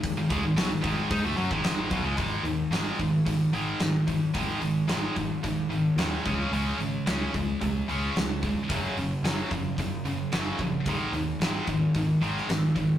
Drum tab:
HH |o-o-o-o-o-o-o-o-|o-o-o-o-o-o-o-o-|o-o-o-o-o-o-o-o-|o-o-o-o-o-o-o-o-|
SD |----o-------o---|----o-------o---|----o-------o---|----o-------o---|
BD |o-o---o-o--o--o-|o-----o-o-----o-|o-----o-o-----o-|------o-o-----o-|

HH |o-o-o-o-o-o-o-o-|o-o-o-o-o-o-o-o-|
SD |----o-------o---|----o------oo---|
BD |o-----o-o-----o-|o-----o-o-----o-|